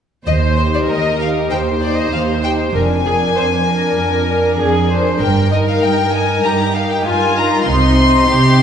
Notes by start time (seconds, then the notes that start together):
0.26 D#2 C5 D#5
0.57 D#4 G4 C5
0.75 D5
0.88 D#2 A#4 D#5
1.20 D#4 G4 F5
1.51 D#2 C5 G5
1.82 D#4 G4 D5
1.99 D#5
2.13 D#2 F5
2.43 D#4 G4 G5
2.74 F1 F2 D4 A#4 G#5
3.06 D4 G#4 A#4
3.36 F2 C5
3.67 D4 A#4
3.99 F2
4.30 D4 A#4
4.59 F2 G#4
4.90 D4 A#4 C5
5.21 G1 G2 A#4 G5
5.52 D#4 A#4 D#5
5.68 F5
5.82 G2 G5
6.13 D#4 A#4 G#5
6.43 G2 G4 A#5
6.75 D#4 A#4 F5
6.91 G5
7.05 G2 F4 G#5
7.37 D#4 A#4 A#5
7.67 C2 C3 D#4 C5 C6
7.99 D#4 C5
8.28 C3 G4
8.59 D#4 C5